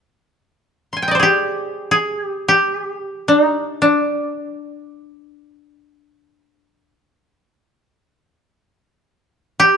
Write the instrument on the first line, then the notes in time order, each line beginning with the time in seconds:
koto
0.93 G#5 C6
1.02 G5
1.08 D5 D#5
1.15 C5
1.20 G4 G#4
1.91 G#4
2.22 G4
2.48 G4
3.28 D4
3.40 D#4
3.82 D4
9.60 G4